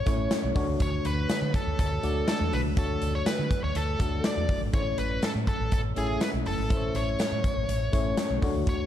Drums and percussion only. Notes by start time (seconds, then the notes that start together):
0.06 kick, closed hi-hat, tambourine
0.31 snare, closed hi-hat, tambourine
0.56 kick, open hi-hat, tambourine
0.80 kick, closed hi-hat, tambourine
1.05 closed hi-hat, tambourine
1.29 snare, closed hi-hat, tambourine
1.54 kick, closed hi-hat, tambourine
1.79 kick, closed hi-hat, tambourine
2.03 closed hi-hat, tambourine
2.28 snare, closed hi-hat, tambourine
2.53 open hi-hat, tambourine
2.77 kick, closed hi-hat, tambourine
3.02 closed hi-hat, tambourine
3.26 snare, closed hi-hat, tambourine
3.51 kick, closed hi-hat, tambourine
3.75 closed hi-hat, tambourine
4.00 kick, closed hi-hat, tambourine
4.24 snare, closed hi-hat, tambourine
4.49 kick, open hi-hat, tambourine
4.73 kick, closed hi-hat, tambourine
4.98 closed hi-hat, tambourine
5.22 snare, closed hi-hat, tambourine
5.47 kick, closed hi-hat
5.72 kick, closed hi-hat
5.96 closed hi-hat, tambourine
6.21 snare, closed hi-hat, tambourine
6.46 open hi-hat, tambourine
6.70 kick, closed hi-hat, tambourine
6.95 closed hi-hat, tambourine
7.19 snare, closed hi-hat, tambourine
7.44 kick, closed hi-hat
7.69 closed hi-hat, tambourine
7.93 kick, closed hi-hat, tambourine
8.17 snare, closed hi-hat, tambourine
8.42 kick, open hi-hat, tambourine
8.67 kick, closed hi-hat, tambourine